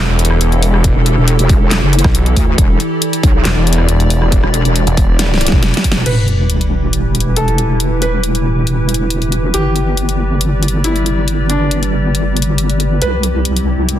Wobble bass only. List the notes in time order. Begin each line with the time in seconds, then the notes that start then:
0.96 E1
1.17 E1
1.39 E1
1.83 F#1
2.36 D2
2.58 E1
3.23 B1
4.44 E1
4.65 E1
5.52 E1
5.96 E1
6.06 E1
9.54 G1
13.02 C2